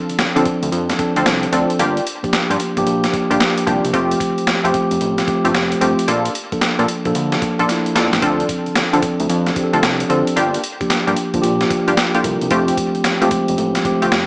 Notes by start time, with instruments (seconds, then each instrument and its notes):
Already playing: tine electric piano F3 C4 D4 A4
0.09 analog synth bass D3, closed hi-hat
0.19 analog synth bass D3, snare, closed hi-hat
0.36 analog synth bass D3, tine electric piano F3 C4 D4 A4, analog polysynth C4 D4 F4 A4, closed hi-hat
0.46 kick, closed hi-hat
0.63 analog synth bass D2, closed hi-hat
0.72 analog synth bass F2, closed hi-hat
0.89 snare, closed hi-hat
0.98 tine electric piano F3 C4 D4 A4, kick, closed hi-hat
1.16 analog synth bass D2, analog polysynth C4 D4 F4 A4, closed hi-hat
1.26 analog synth bass C2, snare, closed hi-hat
1.43 closed hi-hat
1.52 analog synth bass D2, tine electric piano F3 C4 D4 A4, analog polysynth C4 D4 F4 A4, closed hi-hat
1.70 closed hi-hat
1.79 analog synth bass G1, analog polysynth A#3 D4 F4 G4, closed hi-hat
1.97 closed hi-hat
2.07 closed hi-hat
2.23 analog synth bass G2, tine electric piano F3 A#3 D4 G4, kick, closed hi-hat
2.33 analog synth bass G2, snare, closed hi-hat
2.50 analog synth bass G2, analog polysynth A#3 D4 F4 G4, closed hi-hat
2.60 closed hi-hat
2.77 analog synth bass G1, tine electric piano F3 A#3 D4 G4, kick, closed hi-hat
2.86 analog synth bass A#1, closed hi-hat
3.04 snare, closed hi-hat
3.13 kick, closed hi-hat
3.30 analog synth bass G1, analog polysynth A#3 D4 F4 G4, closed hi-hat
3.40 tine electric piano F3 A#3 D4 G4, snare, closed hi-hat
3.58 closed hi-hat
3.67 analog synth bass C2, analog polysynth A#3 D4 F4 G4, kick, closed hi-hat
3.84 analog synth bass C2, closed hi-hat
3.93 analog synth bass F1, tine electric piano F3 A3 C4 G4, analog polysynth A3 C4 F4 G4, kick, closed hi-hat
4.11 closed hi-hat
4.20 kick, closed hi-hat
4.38 analog synth bass F2, closed hi-hat
4.47 analog synth bass F2, snare, closed hi-hat
4.64 analog synth bass F2, tine electric piano F3 A3 C4 G4, analog polysynth A3 C4 F4 G4, closed hi-hat
4.74 kick, closed hi-hat
4.91 analog synth bass F1, closed hi-hat
5.01 analog synth bass A1, closed hi-hat
5.18 snare, closed hi-hat
5.27 tine electric piano F3 A3 C4 G4, kick, closed hi-hat
5.44 analog synth bass G1, analog polysynth A3 C4 F4 G4, closed hi-hat
5.54 analog synth bass F1, snare, closed hi-hat
5.72 closed hi-hat
5.81 analog synth bass G1, tine electric piano F3 A3 C4 G4, analog polysynth A3 C4 F4 G4, closed hi-hat
5.99 closed hi-hat
6.08 analog synth bass A#1, analog polysynth A#3 D4 F4 A4, closed hi-hat
6.25 closed hi-hat
6.35 closed hi-hat
6.52 analog synth bass A#2, tine electric piano F3 A#3 D4 A4, kick, closed hi-hat
6.61 analog synth bass A#2, snare, closed hi-hat
6.79 analog synth bass A#2, analog polysynth A#3 D4 F4 A4, closed hi-hat
6.88 closed hi-hat
7.05 analog synth bass A#1, tine electric piano F3 A#3 D4 A4, kick, closed hi-hat
7.15 analog synth bass D2, closed hi-hat
7.32 snare, closed hi-hat
7.42 kick, closed hi-hat
7.59 analog synth bass A#1, analog polysynth A#3 D4 F4 A4, closed hi-hat
7.69 tine electric piano F3 A#3 D4 E4, snare, closed hi-hat
7.86 closed hi-hat
7.95 analog synth bass F2, analog polysynth A#3 D4 F4 A4, snare, closed hi-hat
8.13 analog synth bass A1, snare, closed hi-hat
8.22 analog synth bass D2, tine electric piano F3 C4 D4 A4, analog polysynth C4 D4 F4 A4, kick, closed hi-hat
8.40 closed hi-hat
8.49 kick, closed hi-hat
8.66 analog synth bass D3, closed hi-hat
8.76 analog synth bass D3, snare, closed hi-hat
8.93 analog synth bass D3, tine electric piano F3 C4 D4 A4, analog polysynth C4 D4 F4 A4, closed hi-hat
9.02 kick, closed hi-hat
9.20 analog synth bass D2, closed hi-hat
9.30 analog synth bass F2, closed hi-hat
9.46 snare, closed hi-hat
9.56 tine electric piano F3 C4 D4 G4, kick, closed hi-hat
9.64 tine electric piano A4
9.73 analog synth bass D2, analog polysynth C4 D4 F4 A4, closed hi-hat
9.83 analog synth bass C2, snare, closed hi-hat
10.00 closed hi-hat
10.09 analog synth bass D2, tine electric piano F3 C4 D4 A4, analog polysynth C4 D4 F4 A4, closed hi-hat
10.27 closed hi-hat
10.36 analog synth bass G1, analog polysynth A#3 D4 F4 G4, closed hi-hat
10.54 closed hi-hat
10.64 closed hi-hat
10.80 analog synth bass G2, tine electric piano F3 A#3 D4 G4, kick, closed hi-hat
10.90 analog synth bass G2, snare, closed hi-hat
11.07 analog synth bass G2, analog polysynth A#3 D4 F4 G4, closed hi-hat
11.16 closed hi-hat
11.34 analog synth bass G1, tine electric piano F3 A#3 D4 F4, kick, closed hi-hat
11.42 analog synth bass A#1, tine electric piano G4, closed hi-hat
11.61 snare, closed hi-hat
11.71 kick, closed hi-hat
11.87 analog synth bass G1, analog polysynth A#3 D4 F4 G4, closed hi-hat
11.97 snare, closed hi-hat
12.14 analog polysynth A#3 D4 F4 G4, tine electric piano E4 A4, closed hi-hat
12.24 analog synth bass C2, tine electric piano F4 A#4, kick, closed hi-hat
12.41 analog synth bass C2, tine electric piano D4 G4, closed hi-hat
12.51 analog synth bass F1, tine electric piano F3 A3 C4 G4, analog polysynth A3 C4 F4 G4, kick, closed hi-hat
12.68 closed hi-hat
12.77 kick, closed hi-hat
12.95 analog synth bass F2, closed hi-hat
13.04 analog synth bass F2, snare, closed hi-hat
13.21 analog synth bass F2, tine electric piano F3 G#3 C4 G4, analog polysynth A3 C4 F4 G4, closed hi-hat
13.28 tine electric piano A3, kick, closed hi-hat
13.48 analog synth bass F1, closed hi-hat
13.58 analog synth bass A1, closed hi-hat
13.75 snare, closed hi-hat
13.85 tine electric piano F3 A3 C4 G4, kick, closed hi-hat
14.02 analog synth bass G1, analog polysynth A3 C4 F4 G4, closed hi-hat
14.12 analog synth bass F1, snare, closed hi-hat